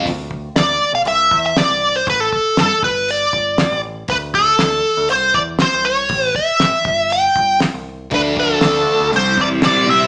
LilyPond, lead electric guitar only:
\new Staff \with { instrumentName = "Lead electric guitar" } { \time 4/4 \key d \dorian \tempo 4 = 119 r4 d''8. f''16 e''8. e''16 d''8. c''16 | b'16 a'8. a'8 b'8 d''4. r8 | b'8 a'4. c''8 d''8 c''8 cis''8~ | cis''8 e''4. g''4 r4 |
b'8 a'4. c''8 d''8 d''8 e''8 | }